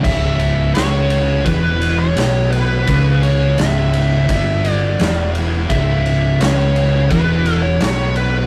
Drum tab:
CC |x-------|--------|--------|
RD |-xxxxxxx|xxxxxxxx|xxxxxxxx|
SD |--o---o-|--o---o-|--o---o-|
BD |o---o---|o---o---|o---o---|